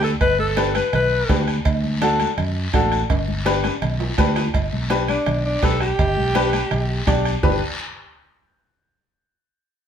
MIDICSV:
0, 0, Header, 1, 6, 480
1, 0, Start_track
1, 0, Key_signature, 1, "major"
1, 0, Tempo, 361011
1, 281, Time_signature, 4, 2, 24, 8
1, 13130, End_track
2, 0, Start_track
2, 0, Title_t, "Alto saxophone"
2, 0, Program_c, 0, 65
2, 51, Note_on_c, 0, 69, 92
2, 156, Note_off_c, 0, 69, 0
2, 279, Note_on_c, 0, 71, 110
2, 502, Note_off_c, 0, 71, 0
2, 524, Note_on_c, 0, 69, 107
2, 968, Note_off_c, 0, 69, 0
2, 1004, Note_on_c, 0, 71, 86
2, 1225, Note_off_c, 0, 71, 0
2, 1260, Note_on_c, 0, 71, 90
2, 1920, Note_off_c, 0, 71, 0
2, 6764, Note_on_c, 0, 62, 83
2, 7209, Note_off_c, 0, 62, 0
2, 7251, Note_on_c, 0, 62, 95
2, 7495, Note_on_c, 0, 69, 110
2, 7515, Note_off_c, 0, 62, 0
2, 7724, Note_off_c, 0, 69, 0
2, 7732, Note_on_c, 0, 67, 99
2, 9354, Note_off_c, 0, 67, 0
2, 13130, End_track
3, 0, Start_track
3, 0, Title_t, "Upright piano"
3, 0, Program_c, 1, 0
3, 0, Note_on_c, 1, 67, 67
3, 0, Note_on_c, 1, 71, 84
3, 135, Note_off_c, 1, 67, 0
3, 137, Note_off_c, 1, 71, 0
3, 749, Note_on_c, 1, 62, 78
3, 753, Note_on_c, 1, 67, 71
3, 760, Note_on_c, 1, 71, 90
3, 1090, Note_off_c, 1, 62, 0
3, 1093, Note_off_c, 1, 67, 0
3, 1096, Note_off_c, 1, 71, 0
3, 1714, Note_on_c, 1, 62, 78
3, 1718, Note_on_c, 1, 67, 75
3, 1726, Note_on_c, 1, 71, 79
3, 2053, Note_off_c, 1, 62, 0
3, 2055, Note_off_c, 1, 67, 0
3, 2058, Note_off_c, 1, 71, 0
3, 2677, Note_on_c, 1, 62, 98
3, 2682, Note_on_c, 1, 66, 85
3, 2689, Note_on_c, 1, 69, 102
3, 3014, Note_off_c, 1, 62, 0
3, 3017, Note_off_c, 1, 66, 0
3, 3020, Note_off_c, 1, 69, 0
3, 3633, Note_on_c, 1, 62, 89
3, 3638, Note_on_c, 1, 66, 84
3, 3644, Note_on_c, 1, 69, 97
3, 3972, Note_off_c, 1, 62, 0
3, 3975, Note_off_c, 1, 66, 0
3, 3977, Note_off_c, 1, 69, 0
3, 4591, Note_on_c, 1, 62, 92
3, 4595, Note_on_c, 1, 67, 88
3, 4600, Note_on_c, 1, 71, 101
3, 4931, Note_off_c, 1, 62, 0
3, 4933, Note_off_c, 1, 67, 0
3, 4936, Note_off_c, 1, 71, 0
3, 5554, Note_on_c, 1, 62, 86
3, 5560, Note_on_c, 1, 67, 79
3, 5565, Note_on_c, 1, 71, 98
3, 5893, Note_off_c, 1, 62, 0
3, 5896, Note_off_c, 1, 67, 0
3, 5899, Note_off_c, 1, 71, 0
3, 6512, Note_on_c, 1, 62, 89
3, 6519, Note_on_c, 1, 67, 86
3, 6523, Note_on_c, 1, 71, 100
3, 6852, Note_off_c, 1, 62, 0
3, 6856, Note_off_c, 1, 67, 0
3, 6858, Note_off_c, 1, 71, 0
3, 7478, Note_on_c, 1, 62, 79
3, 7482, Note_on_c, 1, 67, 72
3, 7487, Note_on_c, 1, 71, 78
3, 7816, Note_off_c, 1, 62, 0
3, 7818, Note_off_c, 1, 67, 0
3, 7820, Note_off_c, 1, 71, 0
3, 8439, Note_on_c, 1, 62, 90
3, 8447, Note_on_c, 1, 67, 87
3, 8449, Note_on_c, 1, 71, 100
3, 8776, Note_off_c, 1, 62, 0
3, 8780, Note_off_c, 1, 67, 0
3, 8781, Note_off_c, 1, 71, 0
3, 9399, Note_on_c, 1, 62, 91
3, 9402, Note_on_c, 1, 67, 83
3, 9410, Note_on_c, 1, 74, 98
3, 9736, Note_off_c, 1, 62, 0
3, 9738, Note_off_c, 1, 67, 0
3, 9742, Note_off_c, 1, 74, 0
3, 9881, Note_on_c, 1, 62, 88
3, 9882, Note_on_c, 1, 67, 82
3, 9883, Note_on_c, 1, 71, 98
3, 10104, Note_off_c, 1, 62, 0
3, 10105, Note_off_c, 1, 67, 0
3, 10105, Note_off_c, 1, 71, 0
3, 13130, End_track
4, 0, Start_track
4, 0, Title_t, "Fingered electric bass"
4, 0, Program_c, 2, 33
4, 0, Note_on_c, 2, 38, 102
4, 183, Note_off_c, 2, 38, 0
4, 278, Note_on_c, 2, 31, 88
4, 1046, Note_off_c, 2, 31, 0
4, 1237, Note_on_c, 2, 35, 91
4, 1622, Note_off_c, 2, 35, 0
4, 1720, Note_on_c, 2, 38, 95
4, 2104, Note_off_c, 2, 38, 0
4, 2200, Note_on_c, 2, 38, 93
4, 2968, Note_off_c, 2, 38, 0
4, 3158, Note_on_c, 2, 42, 83
4, 3542, Note_off_c, 2, 42, 0
4, 3641, Note_on_c, 2, 33, 98
4, 4024, Note_off_c, 2, 33, 0
4, 4119, Note_on_c, 2, 31, 95
4, 4887, Note_off_c, 2, 31, 0
4, 5079, Note_on_c, 2, 35, 86
4, 5463, Note_off_c, 2, 35, 0
4, 5560, Note_on_c, 2, 38, 107
4, 5944, Note_off_c, 2, 38, 0
4, 6039, Note_on_c, 2, 31, 92
4, 6231, Note_off_c, 2, 31, 0
4, 6280, Note_on_c, 2, 35, 73
4, 6856, Note_off_c, 2, 35, 0
4, 7003, Note_on_c, 2, 35, 83
4, 7386, Note_off_c, 2, 35, 0
4, 7481, Note_on_c, 2, 35, 85
4, 7865, Note_off_c, 2, 35, 0
4, 7964, Note_on_c, 2, 31, 99
4, 8155, Note_off_c, 2, 31, 0
4, 8207, Note_on_c, 2, 35, 82
4, 8781, Note_off_c, 2, 35, 0
4, 8927, Note_on_c, 2, 35, 91
4, 9309, Note_off_c, 2, 35, 0
4, 9403, Note_on_c, 2, 35, 98
4, 9787, Note_off_c, 2, 35, 0
4, 9884, Note_on_c, 2, 31, 98
4, 10106, Note_off_c, 2, 31, 0
4, 13130, End_track
5, 0, Start_track
5, 0, Title_t, "Two-headed folk drums"
5, 37, Note_on_c, 9, 37, 87
5, 170, Note_off_c, 9, 37, 0
5, 277, Note_on_c, 9, 36, 78
5, 278, Note_on_c, 9, 37, 77
5, 410, Note_off_c, 9, 36, 0
5, 411, Note_off_c, 9, 37, 0
5, 759, Note_on_c, 9, 37, 89
5, 892, Note_off_c, 9, 37, 0
5, 998, Note_on_c, 9, 37, 78
5, 1131, Note_off_c, 9, 37, 0
5, 1237, Note_on_c, 9, 37, 82
5, 1370, Note_off_c, 9, 37, 0
5, 1720, Note_on_c, 9, 36, 79
5, 1724, Note_on_c, 9, 37, 78
5, 1853, Note_off_c, 9, 36, 0
5, 1857, Note_off_c, 9, 37, 0
5, 1963, Note_on_c, 9, 37, 83
5, 2096, Note_off_c, 9, 37, 0
5, 2200, Note_on_c, 9, 36, 80
5, 2201, Note_on_c, 9, 37, 75
5, 2333, Note_off_c, 9, 36, 0
5, 2334, Note_off_c, 9, 37, 0
5, 2684, Note_on_c, 9, 37, 89
5, 2817, Note_off_c, 9, 37, 0
5, 2921, Note_on_c, 9, 37, 77
5, 3054, Note_off_c, 9, 37, 0
5, 3162, Note_on_c, 9, 37, 80
5, 3295, Note_off_c, 9, 37, 0
5, 3640, Note_on_c, 9, 36, 84
5, 3640, Note_on_c, 9, 37, 88
5, 3773, Note_off_c, 9, 36, 0
5, 3773, Note_off_c, 9, 37, 0
5, 3878, Note_on_c, 9, 37, 80
5, 4011, Note_off_c, 9, 37, 0
5, 4120, Note_on_c, 9, 36, 73
5, 4120, Note_on_c, 9, 37, 77
5, 4253, Note_off_c, 9, 36, 0
5, 4253, Note_off_c, 9, 37, 0
5, 4601, Note_on_c, 9, 37, 85
5, 4734, Note_off_c, 9, 37, 0
5, 4838, Note_on_c, 9, 37, 79
5, 4971, Note_off_c, 9, 37, 0
5, 5080, Note_on_c, 9, 37, 76
5, 5213, Note_off_c, 9, 37, 0
5, 5559, Note_on_c, 9, 36, 85
5, 5559, Note_on_c, 9, 37, 78
5, 5692, Note_off_c, 9, 36, 0
5, 5692, Note_off_c, 9, 37, 0
5, 5797, Note_on_c, 9, 37, 87
5, 5930, Note_off_c, 9, 37, 0
5, 6036, Note_on_c, 9, 37, 76
5, 6039, Note_on_c, 9, 36, 76
5, 6169, Note_off_c, 9, 37, 0
5, 6172, Note_off_c, 9, 36, 0
5, 6516, Note_on_c, 9, 37, 84
5, 6649, Note_off_c, 9, 37, 0
5, 6761, Note_on_c, 9, 37, 79
5, 6894, Note_off_c, 9, 37, 0
5, 7000, Note_on_c, 9, 37, 83
5, 7133, Note_off_c, 9, 37, 0
5, 7481, Note_on_c, 9, 37, 84
5, 7482, Note_on_c, 9, 36, 78
5, 7614, Note_off_c, 9, 37, 0
5, 7615, Note_off_c, 9, 36, 0
5, 7718, Note_on_c, 9, 37, 82
5, 7851, Note_off_c, 9, 37, 0
5, 7962, Note_on_c, 9, 36, 79
5, 7962, Note_on_c, 9, 37, 79
5, 8095, Note_off_c, 9, 36, 0
5, 8095, Note_off_c, 9, 37, 0
5, 8442, Note_on_c, 9, 37, 87
5, 8575, Note_off_c, 9, 37, 0
5, 8684, Note_on_c, 9, 37, 81
5, 8817, Note_off_c, 9, 37, 0
5, 8923, Note_on_c, 9, 37, 87
5, 9056, Note_off_c, 9, 37, 0
5, 9402, Note_on_c, 9, 36, 87
5, 9403, Note_on_c, 9, 37, 82
5, 9535, Note_off_c, 9, 36, 0
5, 9536, Note_off_c, 9, 37, 0
5, 9645, Note_on_c, 9, 37, 86
5, 9778, Note_off_c, 9, 37, 0
5, 9882, Note_on_c, 9, 36, 96
5, 10015, Note_off_c, 9, 36, 0
5, 13130, End_track
6, 0, Start_track
6, 0, Title_t, "Drums"
6, 40, Note_on_c, 9, 73, 67
6, 173, Note_off_c, 9, 73, 0
6, 277, Note_on_c, 9, 56, 99
6, 278, Note_on_c, 9, 63, 32
6, 278, Note_on_c, 9, 64, 62
6, 410, Note_off_c, 9, 56, 0
6, 411, Note_off_c, 9, 63, 0
6, 411, Note_off_c, 9, 64, 0
6, 516, Note_on_c, 9, 63, 69
6, 649, Note_off_c, 9, 63, 0
6, 755, Note_on_c, 9, 63, 90
6, 758, Note_on_c, 9, 56, 63
6, 759, Note_on_c, 9, 73, 69
6, 888, Note_off_c, 9, 63, 0
6, 891, Note_off_c, 9, 56, 0
6, 892, Note_off_c, 9, 73, 0
6, 995, Note_on_c, 9, 73, 70
6, 1000, Note_on_c, 9, 63, 73
6, 1128, Note_off_c, 9, 73, 0
6, 1133, Note_off_c, 9, 63, 0
6, 1238, Note_on_c, 9, 74, 71
6, 1239, Note_on_c, 9, 56, 84
6, 1241, Note_on_c, 9, 63, 33
6, 1241, Note_on_c, 9, 64, 89
6, 1371, Note_off_c, 9, 74, 0
6, 1372, Note_off_c, 9, 56, 0
6, 1374, Note_off_c, 9, 63, 0
6, 1374, Note_off_c, 9, 64, 0
6, 1717, Note_on_c, 9, 73, 73
6, 1719, Note_on_c, 9, 56, 66
6, 1722, Note_on_c, 9, 63, 88
6, 1722, Note_on_c, 9, 64, 76
6, 1850, Note_off_c, 9, 73, 0
6, 1852, Note_off_c, 9, 56, 0
6, 1855, Note_off_c, 9, 63, 0
6, 1855, Note_off_c, 9, 64, 0
6, 1958, Note_on_c, 9, 73, 63
6, 2091, Note_off_c, 9, 73, 0
6, 2198, Note_on_c, 9, 56, 105
6, 2198, Note_on_c, 9, 74, 66
6, 2206, Note_on_c, 9, 63, 34
6, 2331, Note_off_c, 9, 56, 0
6, 2331, Note_off_c, 9, 74, 0
6, 2339, Note_off_c, 9, 63, 0
6, 2444, Note_on_c, 9, 63, 68
6, 2577, Note_off_c, 9, 63, 0
6, 2679, Note_on_c, 9, 73, 74
6, 2683, Note_on_c, 9, 63, 99
6, 2684, Note_on_c, 9, 56, 70
6, 2812, Note_off_c, 9, 73, 0
6, 2816, Note_off_c, 9, 63, 0
6, 2817, Note_off_c, 9, 56, 0
6, 2920, Note_on_c, 9, 73, 74
6, 2922, Note_on_c, 9, 63, 75
6, 3052, Note_off_c, 9, 73, 0
6, 3055, Note_off_c, 9, 63, 0
6, 3161, Note_on_c, 9, 56, 81
6, 3161, Note_on_c, 9, 74, 76
6, 3162, Note_on_c, 9, 63, 35
6, 3162, Note_on_c, 9, 64, 83
6, 3294, Note_off_c, 9, 56, 0
6, 3294, Note_off_c, 9, 74, 0
6, 3295, Note_off_c, 9, 63, 0
6, 3295, Note_off_c, 9, 64, 0
6, 3638, Note_on_c, 9, 56, 61
6, 3638, Note_on_c, 9, 73, 69
6, 3640, Note_on_c, 9, 63, 91
6, 3771, Note_off_c, 9, 56, 0
6, 3771, Note_off_c, 9, 73, 0
6, 3773, Note_off_c, 9, 63, 0
6, 3882, Note_on_c, 9, 73, 66
6, 4015, Note_off_c, 9, 73, 0
6, 4120, Note_on_c, 9, 63, 32
6, 4121, Note_on_c, 9, 56, 90
6, 4121, Note_on_c, 9, 65, 67
6, 4125, Note_on_c, 9, 74, 71
6, 4253, Note_off_c, 9, 63, 0
6, 4254, Note_off_c, 9, 56, 0
6, 4254, Note_off_c, 9, 65, 0
6, 4258, Note_off_c, 9, 74, 0
6, 4360, Note_on_c, 9, 63, 72
6, 4493, Note_off_c, 9, 63, 0
6, 4599, Note_on_c, 9, 56, 68
6, 4602, Note_on_c, 9, 63, 92
6, 4605, Note_on_c, 9, 73, 70
6, 4732, Note_off_c, 9, 56, 0
6, 4735, Note_off_c, 9, 63, 0
6, 4738, Note_off_c, 9, 73, 0
6, 4839, Note_on_c, 9, 65, 69
6, 4841, Note_on_c, 9, 63, 71
6, 4844, Note_on_c, 9, 73, 67
6, 4972, Note_off_c, 9, 65, 0
6, 4973, Note_off_c, 9, 63, 0
6, 4977, Note_off_c, 9, 73, 0
6, 5080, Note_on_c, 9, 56, 81
6, 5080, Note_on_c, 9, 63, 32
6, 5080, Note_on_c, 9, 64, 85
6, 5082, Note_on_c, 9, 74, 70
6, 5213, Note_off_c, 9, 56, 0
6, 5213, Note_off_c, 9, 63, 0
6, 5213, Note_off_c, 9, 64, 0
6, 5215, Note_off_c, 9, 74, 0
6, 5320, Note_on_c, 9, 66, 99
6, 5453, Note_off_c, 9, 66, 0
6, 5562, Note_on_c, 9, 56, 70
6, 5562, Note_on_c, 9, 63, 89
6, 5562, Note_on_c, 9, 66, 78
6, 5565, Note_on_c, 9, 73, 73
6, 5695, Note_off_c, 9, 56, 0
6, 5695, Note_off_c, 9, 63, 0
6, 5695, Note_off_c, 9, 66, 0
6, 5698, Note_off_c, 9, 73, 0
6, 5802, Note_on_c, 9, 66, 86
6, 5803, Note_on_c, 9, 73, 66
6, 5935, Note_off_c, 9, 66, 0
6, 5936, Note_off_c, 9, 73, 0
6, 6043, Note_on_c, 9, 56, 101
6, 6043, Note_on_c, 9, 63, 30
6, 6044, Note_on_c, 9, 74, 65
6, 6176, Note_off_c, 9, 56, 0
6, 6176, Note_off_c, 9, 63, 0
6, 6177, Note_off_c, 9, 74, 0
6, 6280, Note_on_c, 9, 63, 68
6, 6413, Note_off_c, 9, 63, 0
6, 6520, Note_on_c, 9, 63, 98
6, 6521, Note_on_c, 9, 56, 66
6, 6524, Note_on_c, 9, 73, 74
6, 6653, Note_off_c, 9, 63, 0
6, 6654, Note_off_c, 9, 56, 0
6, 6657, Note_off_c, 9, 73, 0
6, 6759, Note_on_c, 9, 63, 73
6, 6768, Note_on_c, 9, 73, 68
6, 6892, Note_off_c, 9, 63, 0
6, 6901, Note_off_c, 9, 73, 0
6, 6998, Note_on_c, 9, 56, 79
6, 7001, Note_on_c, 9, 63, 34
6, 7001, Note_on_c, 9, 64, 84
6, 7008, Note_on_c, 9, 74, 73
6, 7131, Note_off_c, 9, 56, 0
6, 7134, Note_off_c, 9, 63, 0
6, 7134, Note_off_c, 9, 64, 0
6, 7140, Note_off_c, 9, 74, 0
6, 7477, Note_on_c, 9, 56, 69
6, 7483, Note_on_c, 9, 63, 89
6, 7487, Note_on_c, 9, 73, 72
6, 7610, Note_off_c, 9, 56, 0
6, 7616, Note_off_c, 9, 63, 0
6, 7620, Note_off_c, 9, 73, 0
6, 7729, Note_on_c, 9, 73, 66
6, 7862, Note_off_c, 9, 73, 0
6, 7965, Note_on_c, 9, 56, 101
6, 7966, Note_on_c, 9, 63, 33
6, 7966, Note_on_c, 9, 64, 67
6, 7970, Note_on_c, 9, 74, 68
6, 8098, Note_off_c, 9, 56, 0
6, 8099, Note_off_c, 9, 63, 0
6, 8099, Note_off_c, 9, 64, 0
6, 8103, Note_off_c, 9, 74, 0
6, 8201, Note_on_c, 9, 63, 73
6, 8334, Note_off_c, 9, 63, 0
6, 8444, Note_on_c, 9, 63, 102
6, 8446, Note_on_c, 9, 56, 65
6, 8447, Note_on_c, 9, 73, 71
6, 8577, Note_off_c, 9, 63, 0
6, 8579, Note_off_c, 9, 56, 0
6, 8580, Note_off_c, 9, 73, 0
6, 8683, Note_on_c, 9, 73, 70
6, 8685, Note_on_c, 9, 63, 76
6, 8816, Note_off_c, 9, 73, 0
6, 8818, Note_off_c, 9, 63, 0
6, 8922, Note_on_c, 9, 63, 34
6, 8922, Note_on_c, 9, 64, 82
6, 8927, Note_on_c, 9, 56, 78
6, 8928, Note_on_c, 9, 74, 73
6, 9055, Note_off_c, 9, 63, 0
6, 9055, Note_off_c, 9, 64, 0
6, 9060, Note_off_c, 9, 56, 0
6, 9061, Note_off_c, 9, 74, 0
6, 9401, Note_on_c, 9, 63, 86
6, 9401, Note_on_c, 9, 64, 74
6, 9404, Note_on_c, 9, 73, 77
6, 9407, Note_on_c, 9, 56, 70
6, 9534, Note_off_c, 9, 63, 0
6, 9534, Note_off_c, 9, 64, 0
6, 9537, Note_off_c, 9, 73, 0
6, 9540, Note_off_c, 9, 56, 0
6, 9645, Note_on_c, 9, 73, 65
6, 9778, Note_off_c, 9, 73, 0
6, 9880, Note_on_c, 9, 64, 86
6, 9881, Note_on_c, 9, 66, 98
6, 9885, Note_on_c, 9, 74, 99
6, 10013, Note_off_c, 9, 64, 0
6, 10014, Note_off_c, 9, 66, 0
6, 10018, Note_off_c, 9, 74, 0
6, 13130, End_track
0, 0, End_of_file